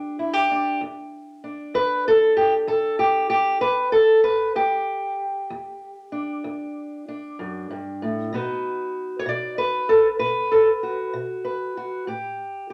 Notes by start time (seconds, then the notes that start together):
Already playing: E2 D4 G4
0.19 E4
0.33 G4
0.51 D4
0.81 E2
1.44 D4
1.74 E2 B4
2.08 A4
2.37 G4
2.67 E2 A4
2.99 G4
3.30 G4
3.61 E2 B4
3.92 A4
4.24 B4
4.55 E2 G4
5.50 E2
6.12 D4
6.44 E2
7.08 D4
7.39 F#2
7.71 G2
8.02 A2
8.32 B2 B3 D#4 F#4 B4
9.19 C#5
9.26 B2 D5
9.58 B4
9.89 A4
10.19 B2 B4
10.52 A4
10.83 F#4
11.13 B2
11.45 B4
11.77 F#4
12.07 A2 G4
12.70 G4